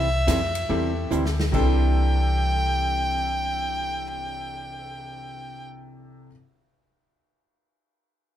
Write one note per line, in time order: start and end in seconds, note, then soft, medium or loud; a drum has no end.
0.00 0.26 C2 medium
0.00 1.12 E5 loud
0.27 0.68 F2 loud
0.27 0.39 C3 medium
0.27 0.39 E3 medium
0.27 0.39 G3 medium
0.27 0.39 C4 medium
0.27 0.39 E4 medium
0.27 0.39 A4 medium
0.27 kick soft
0.27 snare medium
0.27 hi-hat pedal medium
0.27 ride medium
0.55 ride medium
0.69 1.10 E2 medium
0.69 0.91 C3 medium
0.69 0.92 E3 medium
0.69 0.92 G3 medium
0.69 1.33 A3 medium
0.69 1.33 C4 medium
0.69 0.92 C4 medium
0.69 1.33 E4 medium
0.69 0.92 E4 medium
0.69 1.33 G4 medium
0.69 1.33 A4 medium
0.69 0.92 A4 medium
0.69 kick soft
1.11 1.52 D2 medium
1.11 1.23 C3 medium
1.11 1.23 E3 medium
1.11 1.23 G3 medium
1.11 1.23 C4 medium
1.11 1.23 E4 medium
1.11 1.23 A4 medium
1.11 hi-hat pedal medium
1.25 snare medium
1.40 snare medium
1.52 6.25 C2 loud
1.52 6.27 C3 medium
1.52 6.28 C3 medium
1.52 6.29 E3 medium
1.52 6.29 G3 medium
1.52 6.28 C4 medium
1.52 6.30 C4 medium
1.52 6.29 D4 medium
1.52 6.29 E4 medium
1.52 6.30 E4 medium
1.52 6.30 A4 medium
1.52 5.65 G5 medium
1.52 kick medium
1.52 crash medium
1.81 cymbal swell soft